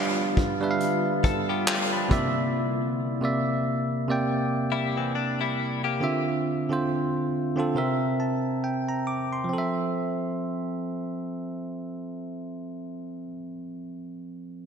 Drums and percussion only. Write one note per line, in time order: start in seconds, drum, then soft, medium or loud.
0.37 kick medium
0.80 closed hi-hat medium
1.24 kick medium
1.24 closed hi-hat medium
1.68 clap loud
2.11 kick loud
2.11 closed hi-hat medium